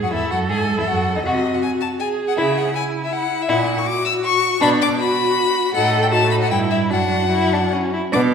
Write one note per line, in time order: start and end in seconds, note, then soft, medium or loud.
0.00 0.06 F#2 medium
0.00 0.13 F#4 medium
0.00 0.13 G#4 medium
0.00 0.12 F#5 medium
0.11 0.19 E2 medium
0.11 0.32 E4 medium
0.11 1.24 A4 medium
0.11 0.31 E5 medium
0.31 0.51 F#2 medium
0.31 0.49 F#4 medium
0.31 0.39 F#5 medium
0.49 0.77 G#2 medium
0.49 0.58 G#4 medium
0.49 0.77 G#5 medium
0.78 0.87 E2 medium
0.78 0.82 E4 medium
0.78 0.89 E5 medium
0.87 1.18 F#2 medium
0.87 1.15 F#4 medium
0.87 1.18 F#5 medium
1.15 1.25 D#2 medium
1.15 1.19 D#4 medium
1.15 1.24 D#5 medium
1.25 1.57 C3 medium
1.25 1.99 F#4 medium
1.25 1.43 F#4 medium
1.25 1.55 D#5 medium
1.54 1.62 F#5 medium
1.62 1.70 G#5 medium
1.81 1.88 A5 medium
2.00 2.73 G#4 medium
2.00 2.08 G#5 medium
2.28 2.37 F#5 medium
2.38 2.69 C#3 medium
2.38 2.55 E4 medium
2.38 2.58 E5 medium
2.57 2.75 F#5 medium
2.74 3.85 E4 medium
2.74 2.83 G#5 medium
3.04 3.14 E5 medium
3.12 3.43 F#5 loud
3.42 3.52 E5 medium
3.49 3.81 A#2 medium
3.49 3.67 E4 medium
3.49 3.80 F#5 medium
3.78 3.88 C#6 medium
3.87 4.60 F#4 medium
3.87 4.05 D6 loud
4.06 4.13 E6 medium
4.24 4.61 C#6 loud
4.61 4.93 B2 medium
4.61 4.98 D4 medium
4.61 4.79 D4 medium
4.61 4.69 B5 loud
4.81 4.89 D6 loud
4.99 5.74 F#4 medium
4.99 5.73 B5 loud
5.74 6.52 A2 medium
5.74 6.10 D#4 medium
5.74 6.13 A4 medium
5.74 6.02 F#5 loud
6.02 6.06 G5 medium
6.11 6.53 D#4 medium
6.11 6.52 F#4 medium
6.11 6.30 A5 loud
6.31 6.35 B5 medium
6.42 6.50 F#5 medium
6.51 6.93 G2 medium
6.51 6.91 E4 medium
6.51 6.92 E4 medium
6.51 6.59 G5 medium
6.71 6.79 E5 medium
6.91 7.93 F#2 medium
6.91 7.28 D4 medium
6.91 7.91 F#4 medium
6.91 7.71 F#5 medium
7.31 7.55 E4 medium
7.53 7.75 D4 medium
7.73 7.93 C#4 medium
7.94 8.02 E4 medium
8.12 8.34 B2 loud
8.12 8.22 B3 medium
8.12 8.20 D4 medium
8.12 8.21 D6 medium